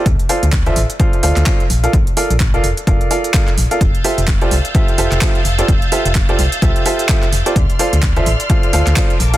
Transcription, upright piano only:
X:1
M:4/4
L:1/16
Q:"Swing 16ths" 1/4=128
K:Dm
V:1 name="Upright piano"
z2 [FAcdf] z2 [FAcde] z2 [FAcdf]2 [FAcdf]2 [FAcdf] z2 [FABdf] | z2 [FABdf] z2 [FABdf] z2 [FABdf]2 [FABdf]2 [FABf] z2 [FABdf] | z2 [FGAce] z2 [FGAcd] z2 [FGAce]2 [FGAce]2 [FAc] z2 [FGAcd] | z2 [FGAce] z2 [FGAcd] z2 [FGAce]2 [FGAce]2 [FGAce] z2 [FGAcd] |
z2 [FAcdf] z2 [FAcde] z2 [FAcdf]2 [FAcdf]2 [FAcdf] z2 [FABdf] |]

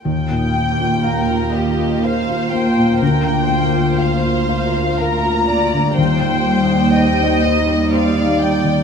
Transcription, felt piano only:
X:1
M:3/4
L:1/16
Q:1/4=61
K:Eb
V:1 name="Felt piano"
E,, B,, B, F f F f F f F B, B,, | D,, D, B, F f F f F f F B, D, | E,, E, G, E c E c E c E G, E, |]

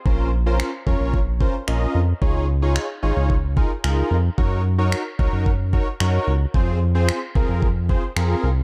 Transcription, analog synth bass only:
X:1
M:4/4
L:1/16
Q:1/4=111
K:Bbm
V:1 name="Analog synth bass" clef=bass
B,,,6 F,, B,,,4- B,,, B,,,2 F,,2 | D,,6 A,,, D,,4- D,, D,,2 F,,2 | G,,6 D,, G,,4- G,, G,,2 D,,2 | F,,6 C,, F,,4- F,, F,,2 C,,2 |]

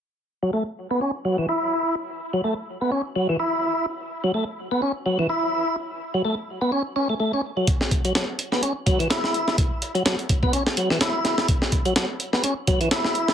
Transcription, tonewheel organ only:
X:1
M:4/4
L:1/16
Q:"Swing 16ths" 1/4=126
K:F#m
V:1 name="Tonewheel organ"
z3 F, A, z2 B, C z F, E, E4 | z3 F, A, z2 B, C z F, E, E4 | z3 F, A, z2 B, C z F, E, E4 | z3 F, A, z2 B, C z C A, A, C z F, |
z3 F, F, z2 B, C z F, E, E4 | z3 F, F, z2 B, C z F, E, E4 | z3 F, F, z2 B, C z F, E, E4 |]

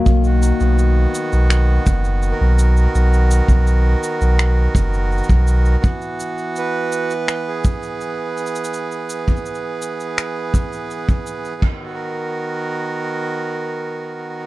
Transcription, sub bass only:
X:1
M:4/4
L:1/16
Q:1/4=83
K:B
V:1 name="Sub bass" clef=bass
B,,,3 B,,,3 z B,,,3 F,,,3 B,,,3 | B,,,3 B,,,3 z B,,,3 F,,,3 B,,,3 | z16 | z16 |
z16 |]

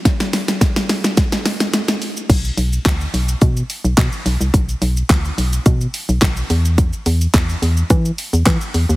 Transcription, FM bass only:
X:1
M:4/4
L:1/16
Q:1/4=107
K:Bm
V:1 name="FM bass" clef=bass
z16 | B,,,2 B,,,2 D,,2 B,,,2 B,,2 z B,,, B,, z B,,, =C,, | B,,,2 B,,,2 D,,2 B,,,2 B,,2 z B,,, B,,,2 E,,2- | E,,2 E,,2 E,,2 E,,2 E,2 z E,, E, z E,, ^D,, |]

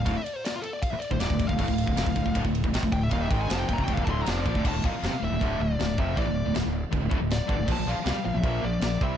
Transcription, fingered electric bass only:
X:1
M:4/4
L:1/16
Q:1/4=157
K:Dm
V:1 name="Fingered electric bass" clef=bass
D,,, z8 z2 D,,, _E,,, D,,, D,,, D,,, | D,,, D,,,2 D,,, F,,, D,,, D,,, D,,, D,,, D,,,2 D,,, ^G,,, D,,, D,,,2 | _E,,,2 ^G,,,2 F,,,2 E,,, F,,, D,,, E,,, D,,,2 F,,,2 B,,, D,,, | D,,, D,,, _E,,, z F,,, z D,,, D,,, D,,,2 D,,,2 D,,,2 F,,,2 |
A,,, D,,,2 D,,, D,,, D,,,2 z D,,, D,,, D,,, D,,,2 z G,,, D,,, | B,,, B,,, B,,, z C,, z B,,, B,,, B,,,2 B,,,2 B,,,2 C,,2 |]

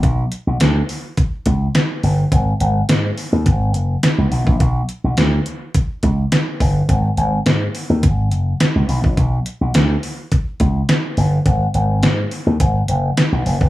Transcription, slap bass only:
X:1
M:4/4
L:1/16
Q:1/4=105
K:B
V:1 name="Slap bass" clef=bass
B,,,2 z B,,, =D,,2 z4 C,,2 z2 =G,,,2 | G,,,2 G,,,2 G,,2 z D,, G,,,2 F,,,2 z C,, B,,, A,,, | B,,,2 z B,,, =D,,2 z4 C,,2 z2 =G,,,2 | G,,,2 G,,,2 G,,2 z D,, G,,,2 F,,,2 z C,, B,,, A,,, |
B,,,2 z B,,, =D,,2 z4 C,,2 z2 =G,,,2 | G,,,2 G,,,2 G,,2 z D,, G,,,2 F,,,2 z B,,, F,,, =G,,, |]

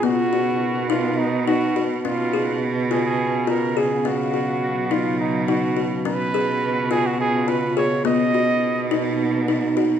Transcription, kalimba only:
X:1
M:7/8
L:1/8
Q:1/4=105
K:Blyd
V:1 name="Kalimba"
B, F2 D2 D F | C G2 E2 E G | C F2 D2 D F | C G2 E2 E G |
B, F2 D2 D F |]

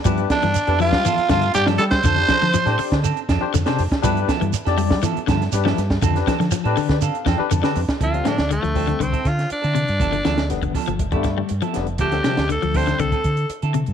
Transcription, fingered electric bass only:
X:1
M:4/4
L:1/16
Q:1/4=121
K:Ddor
V:1 name="Fingered electric bass" clef=bass
G,,2 z G,, z F,,2 G, z2 G,,2 G,,2 G,2 | F,,2 z F, z A,, z D,2 z F,, z F,, z F,, z | G,,2 z G,, z F,,2 G, z2 G,,2 G,,2 G,,2 | F,,2 z F, z A,, z D,2 z F,, z F,, z F,, z |
D,,2 z D,,2 D,,3 C,, z D,2 z D,2 G,, | G,,,2 D,,2 F,,,2 z G,,,2 G,,3 G,, z F,,,2 | D,,2 z D,,2 D,,3 C,, z D,2 z D,2 G,, |]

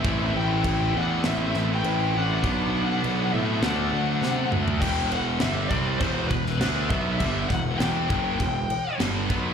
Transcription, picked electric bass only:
X:1
M:4/4
L:1/8
Q:1/4=100
K:Em
V:1 name="Picked electric bass" clef=bass
A,,, A,,, A,,, E,, A,,, A,,, A,,, A,,, | B,,,2 B,,, A,, D,, D,, C, D,, | E,,,2 G,,, C,, E,,, E,,, D,, B,,, | G,,, E,,, E,,, F,,, E,,, z G,,, B,,, |]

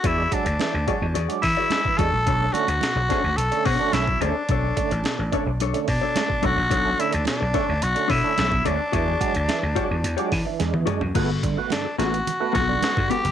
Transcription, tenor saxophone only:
X:1
M:4/4
L:1/16
Q:1/4=108
K:Bdor
V:1 name="Tenor saxophone"
E2 D6 z2 E4 A2- | A2 F6 A2 F2 E2 D2- | D8 z2 D4 F2- | F2 E D D4 F2 E4 D2- |
D12 z4 | z4 D2 F4 F4 =G2 |]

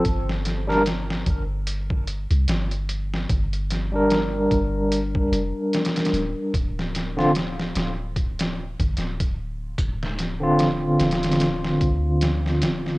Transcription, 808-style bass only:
X:1
M:4/4
L:1/16
Q:"Swing 16ths" 1/4=74
K:Gm
V:1 name="808-style bass" clef=bass
G,,,6 G,,,4- G,,, C,, G,,,4 | G,,,6 G,,,4 F,,, z3 D,,, z | D,,,6 D,,,4- D,,, G,,, D,,,4 | D,,,6 D,,,4 D,,4 D,,,2 |]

